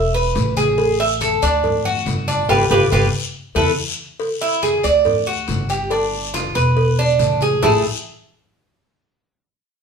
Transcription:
0.00 0.32 E1 medium
0.00 0.13 E5 medium
0.14 0.56 B4 medium
0.14 high conga soft
0.35 1.36 A1 loud
0.35 cowbell medium
0.35 high conga medium
0.35 short guiro medium
0.57 0.98 G#4 medium
0.57 high conga medium
0.57 short guiro medium
0.78 cowbell loud
0.78 high conga soft
0.78 long guiro medium
0.99 1.21 E5 medium
0.99 cowbell medium
0.99 high conga soft
1.21 1.42 A4 medium
1.21 cowbell medium
1.21 high conga medium
1.21 short guiro medium
1.42 2.02 D2 medium
1.42 1.84 D4 medium
1.42 high conga soft
1.42 short guiro medium
1.63 cowbell loud
1.63 high conga soft
1.63 low conga medium
1.63 long guiro medium
1.85 2.27 F#4 medium
1.85 high conga soft
1.85 low conga medium
2.06 2.46 G1 medium
2.06 cowbell medium
2.06 high conga medium
2.06 short guiro medium
2.28 2.49 D4 medium
2.28 high conga medium
2.28 short guiro medium
2.49 2.65 G1 medium
2.49 2.63 F4 medium
2.49 2.63 G4 medium
2.49 2.63 B4 medium
2.49 cowbell loud
2.49 high conga medium
2.49 long guiro loud
2.70 2.86 G1 loud
2.70 2.85 F4 medium
2.70 2.85 G4 loud
2.70 2.85 B4 medium
2.70 cowbell loud
2.70 high conga loud
2.70 long guiro loud
2.90 3.08 G1 loud
2.90 3.06 F4 loud
2.90 3.06 G4 loud
2.90 3.06 B4 medium
2.90 cowbell loud
2.90 high conga loud
2.90 long guiro loud
3.55 3.72 E2 loud
3.55 3.70 E4 medium
3.55 3.70 A4 loud
3.55 3.70 B4 loud
3.55 cowbell loud
3.55 high conga loud
3.55 long guiro loud
4.20 cowbell loud
4.20 high conga soft
4.20 long guiro medium
4.41 4.62 E4 medium
4.41 cowbell medium
4.41 high conga soft
4.62 4.84 G#4 medium
4.62 cowbell medium
4.62 high conga medium
4.62 short guiro medium
4.84 5.44 D2 medium
4.84 5.26 D5 medium
4.84 short guiro medium
5.05 cowbell loud
5.05 high conga soft
5.05 low conga medium
5.05 long guiro medium
5.27 5.69 F#4 medium
5.27 high conga soft
5.48 6.49 G1 medium
5.48 cowbell medium
5.48 high conga medium
5.48 short guiro medium
5.69 5.91 G4 medium
5.69 short guiro medium
5.90 6.33 D4 medium
5.90 cowbell loud
5.90 high conga soft
5.90 long guiro medium
6.12 high conga soft
6.34 6.55 F4 medium
6.34 cowbell medium
6.34 high conga loud
6.34 short guiro medium
6.55 7.16 E1 loud
6.55 6.97 B4 medium
6.55 cowbell medium
6.55 short guiro medium
6.77 cowbell loud
6.77 high conga soft
6.77 long guiro medium
6.98 7.40 D4 medium
6.98 high conga soft
7.19 7.58 A1 medium
7.19 cowbell medium
7.19 high conga loud
7.19 short guiro medium
7.41 7.62 G#4 medium
7.41 high conga medium
7.41 short guiro medium
7.62 7.83 A1 medium
7.62 7.83 A3 medium
7.62 7.83 E4 medium
7.62 7.83 G#4 medium
7.62 low bongo loud
7.62 low conga loud
7.62 long guiro medium

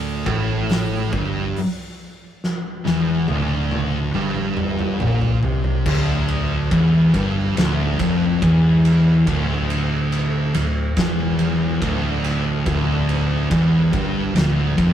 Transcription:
0.00 0.22 D1 medium
0.00 0.25 D2 loud
0.26 1.09 A1 medium
0.26 1.11 A2 loud
0.26 kick loud
0.69 snare loud
0.69 open hi-hat medium
1.13 1.53 G1 loud
1.13 1.55 G2 loud
1.13 kick loud
1.56 open hi-hat medium
2.44 snare medium
2.85 3.25 E1 medium
2.85 3.27 E2 loud
2.85 snare medium
3.28 4.10 D1 medium
3.28 4.13 D2 loud
3.28 high tom medium
3.71 high tom medium
4.14 4.96 G1 loud
4.14 4.99 G2 loud
4.14 mid tom medium
4.36 mid tom medium
4.57 mid tom medium
4.79 mid tom medium
5.00 5.40 A#1 loud
5.00 5.42 A#2 medium
5.00 mid tom medium
5.22 floor tom medium
5.43 5.83 C2 medium
5.43 5.85 C3 loud
5.43 floor tom medium
5.64 floor tom medium
5.86 6.67 D1 loud
5.86 6.70 D2 loud
5.86 kick loud
5.86 crash loud
6.28 ride medium
6.71 7.11 E1 medium
6.71 7.12 E2 loud
6.71 kick loud
6.71 ride loud
7.14 7.54 G1 loud
7.14 7.56 G2 loud
7.14 kick loud
7.14 ride medium
7.56 7.96 D1 loud
7.56 7.98 D2 loud
7.56 snare loud
7.56 ride loud
7.99 8.39 F1 loud
7.99 8.41 F2 loud
7.99 kick loud
7.99 ride medium
8.42 9.23 E1 loud
8.42 9.26 E2 loud
8.42 kick loud
8.42 ride loud
8.85 ride medium
9.27 10.51 D1 loud
9.27 10.53 D2 loud
9.27 kick loud
9.27 ride loud
9.70 ride medium
10.12 ride medium
10.54 10.94 D1 medium
10.54 10.89 D2 medium
10.54 ride medium
10.97 11.78 E1 loud
10.97 11.80 E2 loud
10.97 kick loud
10.97 snare loud
10.97 ride loud
11.39 ride medium
11.81 12.62 D1 medium
11.81 12.65 D2 loud
11.81 kick medium
11.81 ride loud
12.24 ride medium
12.66 13.47 D1 loud
12.66 13.49 D2 loud
12.66 kick loud
12.66 ride medium
13.09 ride medium
13.51 13.90 E1 medium
13.51 13.92 E2 loud
13.51 kick loud
13.51 ride loud
13.93 14.33 G1 loud
13.93 14.34 G2 loud
13.93 kick loud
13.93 ride medium
14.35 14.75 D1 loud
14.35 14.76 D2 loud
14.35 snare loud
14.35 ride loud
14.77 14.93 F1 loud
14.77 14.93 F2 loud
14.77 kick loud
14.77 ride medium

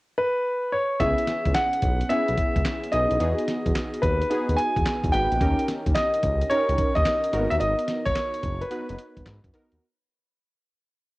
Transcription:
0.18 0.74 B4 medium
0.72 1.01 C#5 medium
1.00 1.14 C#2 loud
1.00 1.77 B3 medium
1.00 1.77 C#4 medium
1.00 1.78 E4 medium
1.00 1.78 G#4 medium
1.00 1.57 E5 medium
1.00 kick loud
1.00 closed hi-hat medium
1.18 closed hi-hat medium
1.27 snare medium
1.27 closed hi-hat medium
1.45 1.53 C#2 medium
1.45 kick medium
1.45 closed hi-hat soft
1.54 2.12 F#5 loud
1.54 snare loud
1.54 clap medium
1.54 closed hi-hat medium
1.73 closed hi-hat medium
1.82 2.03 B1 medium
1.82 kick medium
1.82 closed hi-hat medium
2.01 closed hi-hat medium
2.09 2.66 B3 medium
2.09 2.67 C#4 medium
2.09 2.67 E4 medium
2.09 2.67 G#4 medium
2.09 2.95 E5 medium
2.09 closed hi-hat medium
2.28 2.36 B1 medium
2.28 closed hi-hat soft
2.38 kick loud
2.38 closed hi-hat medium
2.56 2.63 C#2 medium
2.56 kick medium
2.56 closed hi-hat soft
2.65 snare loud
2.65 clap medium
2.65 closed hi-hat medium
2.84 closed hi-hat soft
2.92 3.06 B1 medium
2.92 3.14 B3 medium
2.92 3.14 D#4 medium
2.92 3.14 E4 medium
2.92 3.15 G#4 medium
2.92 4.06 D#5 loud
2.92 closed hi-hat medium
3.11 3.18 B1 medium
3.11 closed hi-hat soft
3.20 3.34 E2 loud
3.20 3.97 B3 medium
3.20 3.98 D#4 medium
3.20 3.98 F#4 medium
3.20 3.98 G#4 medium
3.20 closed hi-hat medium
3.39 closed hi-hat soft
3.48 snare medium
3.48 closed hi-hat medium
3.66 3.73 E2 medium
3.66 kick medium
3.66 closed hi-hat soft
3.75 snare loud
3.75 clap medium
3.75 closed hi-hat medium
3.94 closed hi-hat medium
4.02 4.23 D#2 loud
4.02 4.59 B4 medium
4.02 kick medium
4.02 closed hi-hat medium
4.22 closed hi-hat medium
4.30 4.87 B3 medium
4.30 4.87 D#4 medium
4.30 4.87 F#4 medium
4.30 4.87 G#4 medium
4.30 closed hi-hat medium
4.49 4.56 D#2 medium
4.49 closed hi-hat soft
4.57 5.14 G#5 loud
4.57 closed hi-hat medium
4.76 4.83 E2 medium
4.76 kick medium
4.76 closed hi-hat soft
4.86 snare loud
4.86 clap medium
4.86 closed hi-hat medium
5.04 5.11 E2 medium
5.04 kick medium
5.04 closed hi-hat soft
5.12 5.27 G#1 medium
5.12 5.34 B3 medium
5.12 5.35 D#4 medium
5.12 5.35 F#4 medium
5.12 5.35 B4 medium
5.12 5.64 G5 loud
5.12 closed hi-hat medium
5.31 5.38 A#1 medium
5.31 closed hi-hat soft
5.41 5.54 D#2 loud
5.41 6.18 C#4 medium
5.41 6.18 D#4 medium
5.41 6.18 G4 medium
5.41 6.18 A#4 medium
5.41 kick loud
5.41 closed hi-hat medium
5.59 closed hi-hat medium
5.68 snare medium
5.68 closed hi-hat medium
5.86 5.93 D#2 medium
5.86 kick medium
5.86 closed hi-hat medium
5.94 6.52 D#5 loud
5.94 snare loud
5.94 clap medium
5.94 closed hi-hat medium
6.14 closed hi-hat medium
6.23 6.43 C#2 loud
6.23 kick medium
6.23 closed hi-hat medium
6.41 closed hi-hat medium
6.50 7.07 C#4 medium
6.50 7.07 D#4 medium
6.50 7.07 G4 medium
6.50 7.07 A#4 medium
6.50 6.97 C#5 loud
6.50 closed hi-hat medium
6.69 6.76 C#2 medium
6.69 closed hi-hat soft
6.78 kick loud
6.78 closed hi-hat medium
6.95 7.03 D#2 loud
6.95 7.53 D#5 loud
6.95 kick medium
6.95 closed hi-hat soft
7.05 snare loud
7.05 clap medium
7.05 closed hi-hat medium
7.24 closed hi-hat medium
7.33 7.47 G#1 loud
7.33 7.42 A#3 medium
7.33 8.23 D#4 medium
7.33 8.23 F#4 medium
7.33 8.23 A#4 medium
7.33 closed hi-hat medium
7.39 8.26 B3 medium
7.50 7.58 D#2 medium
7.50 7.55 E5 loud
7.50 closed hi-hat soft
7.60 7.74 G#1 loud
7.60 8.07 D#5 loud
7.60 closed hi-hat medium
7.79 closed hi-hat medium
7.88 snare medium
7.88 closed hi-hat medium
8.06 8.13 G#1 medium
8.06 8.63 C#5 loud
8.06 kick medium
8.06 closed hi-hat medium
8.16 snare loud
8.16 clap medium
8.16 closed hi-hat medium
8.34 closed hi-hat medium
8.43 8.64 F#1 loud
8.43 kick medium
8.43 closed hi-hat medium
8.61 9.40 B4 medium
8.61 closed hi-hat medium
8.71 9.27 B3 medium
8.71 9.27 D#4 medium
8.71 9.27 F#4 medium
8.71 9.28 B4 medium
8.71 closed hi-hat medium
8.89 8.96 F#1 medium
8.89 closed hi-hat soft
8.99 closed hi-hat medium
9.17 9.24 G#1 medium
9.17 kick medium
9.17 closed hi-hat soft
9.26 9.40 G#2 loud
9.26 snare loud
9.26 clap medium
9.26 closed hi-hat medium
9.44 9.51 F#2 medium
9.44 kick medium
9.44 closed hi-hat medium
9.53 9.75 B3 medium
9.53 9.75 D#4 medium
9.53 9.75 F#4 medium
9.53 9.76 A#4 medium
9.53 closed hi-hat medium
9.72 9.79 D#2 loud
9.72 closed hi-hat soft

